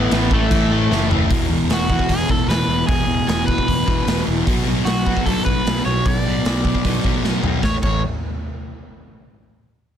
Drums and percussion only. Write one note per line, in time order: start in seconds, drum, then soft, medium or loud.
0.11 snare loud
0.11 crash medium
0.31 kick medium
0.51 kick loud
0.51 crash medium
0.92 snare medium
1.11 floor tom medium
1.31 kick loud
1.31 open hi-hat medium
1.70 snare loud
1.70 open hi-hat medium
1.90 kick medium
1.99 kick medium
2.09 kick medium
2.09 open hi-hat medium
2.29 kick medium
2.50 snare loud
2.50 open hi-hat medium
2.89 kick loud
2.89 open hi-hat medium
3.28 snare loud
3.28 open hi-hat medium
3.48 kick medium
3.58 kick medium
3.68 kick loud
3.68 open hi-hat medium
3.88 kick medium
4.07 snare loud
4.07 open hi-hat medium
4.47 kick loud
4.47 open hi-hat medium
4.86 snare loud
4.86 open hi-hat medium
5.07 kick medium
5.17 kick medium
5.26 kick medium
5.26 open hi-hat medium
5.46 kick medium
5.66 snare loud
5.66 open hi-hat medium
6.06 kick loud
6.06 open hi-hat medium
6.45 snare loud
6.45 open hi-hat medium
6.65 kick medium
6.75 kick medium
6.85 kick medium
6.85 open hi-hat medium
7.04 kick medium
7.24 snare medium
7.44 floor tom medium
7.63 kick medium
7.63 snare medium
7.83 kick loud
7.83 crash medium